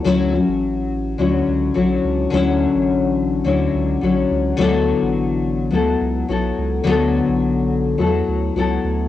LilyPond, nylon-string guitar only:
\new Staff \with { instrumentName = "Nylon-string guitar" } { \time 4/4 \key b \minor \tempo 4 = 106 <d fis cis' e'>8 <fis cis' e'>4. <d fis cis' e'>4 <d fis cis' e'>4 | <d fis cis' e'>2 <d fis cis' e'>4 <d fis cis' e'>4 | <d fis b e' a'>2 <fis b e' a'>4 <fis b e' a'>4 | <d fis b e' a'>2 <fis b e' a'>4 <fis b e' a'>4 | }